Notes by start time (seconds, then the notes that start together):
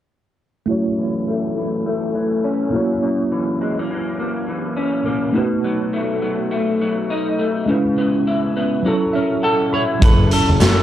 0.66 F#2 A3 E4 F#4
0.71 C#5
0.98 E3
1.28 A3
1.58 E3
1.86 A3
2.15 E3
2.44 C#4
2.71 F#2 A#3 E4 F#4
2.76 C#5
3.03 F#2
3.32 E3
3.61 G#3
3.79 A#3
3.90 E3
4.19 A#3
4.48 E3
4.76 C#4
5.05 A#3
5.33 B2 A3 D#4 F#4
5.38 B4
5.64 F#3
5.93 A3
6.22 F#3
6.51 A3
6.82 F#3
7.10 D#4
7.39 A3
7.66 C#3 G#3 C#4 E4
7.71 B4
7.98 B3
8.27 E4
8.57 B3
8.83 F#3 C#4 E4
8.88 A4
9.13 C#4 E5
9.43 A4 F#5
9.73 E4 C#5 B5
9.99 F#1 F#3 C#4 A4, kick, closed hi-hat
10.04 A4 B4
10.31 C#4 A4, closed hi-hat
10.49 F#1
10.60 F#2 A4, snare, closed hi-hat